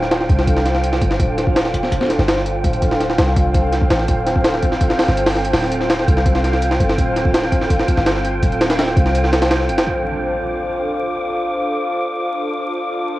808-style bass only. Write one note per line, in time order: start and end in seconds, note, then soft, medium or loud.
0.00 0.28 D1 loud
0.30 1.00 C2 medium
1.02 1.18 G1 loud
1.20 2.18 D1 loud
2.19 2.63 G1 medium
2.64 3.17 D1 loud
3.18 3.89 C2 medium
3.90 4.07 A1 medium
4.09 5.07 D1 loud
5.08 5.52 G1 loud
5.53 6.06 D1 medium
6.08 6.79 C2 medium
6.80 6.96 G1 loud
6.98 7.96 D1 medium
7.97 8.41 G1 loud
8.42 8.95 D1 medium
8.97 9.70 C2 medium
9.69 9.80 G1 medium
9.78 9.86 F1 medium